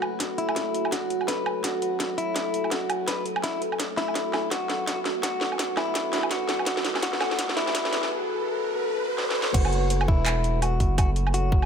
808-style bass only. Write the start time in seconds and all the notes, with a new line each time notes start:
Already playing: F#1
0.38 F#1
0.92 F#1
1.64 G#1
2.36 F#1
3.08 F#1
3.80 F#1
4.51 G#1
5.23 F#1
6.13 F#1
7.39 G#1
9.54 F#1
10.08 E1
10.80 F#1